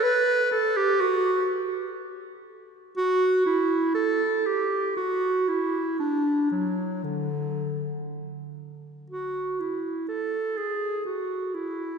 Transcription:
\new Staff \with { instrumentName = "Clarinet" } { \time 3/4 \key d \major \tempo 4 = 61 b'8 a'16 g'16 fis'8 r4. | fis'8 e'8 a'8 g'8 fis'8 e'8 | d'8 fis8 d4 r4 | \key fis \minor fis'8 e'8 a'8 gis'8 fis'8 e'8 | }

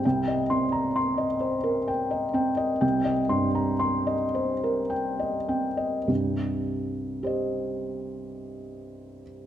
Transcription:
<<
  \new Staff \with { instrumentName = "Felt piano" } { \time 3/4 \key c \minor \tempo 4 = 55 << { r8 c'''8 r2 | r2. | r4 <g' c'' ees''>2 | } \\ { g''16 ees''8 bes''16 c'''16 ees''16 c''16 bes'16 g''16 ees''16 g''16 ees''16 | g''16 ees''16 c'''16 bes''16 c'''16 ees''16 c''16 bes'16 g''16 ees''16 g''16 ees''16 | r2. | } >> }
  \new Staff \with { instrumentName = "Felt piano" } { \clef bass \time 3/4 \key c \minor c,8 c'4 r4 c'8 | c,8 g,4 r4 c'8 | <c, g,>2. | }
>>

